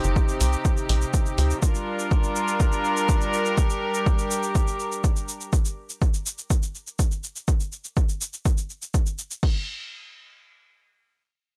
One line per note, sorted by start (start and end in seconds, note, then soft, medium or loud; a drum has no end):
0.00 1.59 C3 medium
0.00 1.59 C4 medium
0.00 1.59 D#4 medium
0.00 1.59 G4 medium
0.04 0.20 G1 medium
0.04 shaker soft
0.16 kick loud
0.16 shaker soft
0.28 shaker soft
0.41 0.56 C2 medium
0.41 open hi-hat medium
0.41 shaker medium
0.53 shaker soft
0.65 kick loud
0.65 shaker medium
0.77 shaker soft
0.89 1.05 A#1 medium
0.89 open hi-hat loud
0.89 shaker soft
1.02 shaker soft
1.14 kick loud
1.14 shaker medium
1.26 shaker soft
1.38 1.54 D2 medium
1.38 open hi-hat medium
1.38 shaker soft
1.50 shaker soft
1.62 5.49 G3 medium
1.62 5.49 D4 medium
1.62 3.56 F4 medium
1.62 5.49 A#4 medium
1.62 kick loud
1.62 shaker medium
1.75 shaker soft
1.99 shaker soft
2.11 kick loud
2.11 shaker soft
2.24 shaker soft
2.36 shaker medium
2.48 shaker soft
2.60 kick loud
2.60 shaker medium
2.72 shaker soft
2.85 shaker soft
2.97 shaker soft
3.09 kick loud
3.09 shaker medium
3.21 shaker soft
3.33 shaker soft
3.46 shaker soft
3.58 5.51 G4 medium
3.58 kick loud
3.58 shaker medium
3.70 shaker soft
3.94 shaker soft
4.06 kick loud
4.06 shaker soft
4.19 shaker soft
4.31 shaker medium
4.43 shaker soft
4.55 kick loud
4.55 shaker medium
4.67 shaker soft
4.80 shaker soft
4.92 shaker soft
5.04 kick loud
5.04 shaker medium
5.16 shaker soft
5.29 shaker soft
5.41 shaker soft
5.53 kick loud
5.53 shaker medium
5.65 shaker soft
5.89 shaker soft
6.02 kick loud
6.02 shaker soft
6.14 shaker soft
6.26 shaker medium
6.38 shaker soft
6.50 kick loud
6.50 shaker medium
6.63 shaker soft
6.75 shaker soft
6.87 shaker soft
6.99 kick loud
6.99 shaker medium
7.11 shaker soft
7.24 shaker medium
7.36 shaker soft
7.48 kick loud
7.48 shaker medium
7.60 shaker soft
7.72 shaker soft
7.84 shaker soft
7.97 kick loud
7.97 shaker soft
8.09 shaker soft
8.21 shaker medium
8.33 shaker soft
8.45 kick loud
8.45 shaker medium
8.58 shaker soft
8.70 shaker soft
8.82 shaker soft
8.94 kick loud
8.94 shaker medium
9.06 shaker soft
9.19 shaker soft
9.31 shaker soft
9.43 kick loud
9.43 crash medium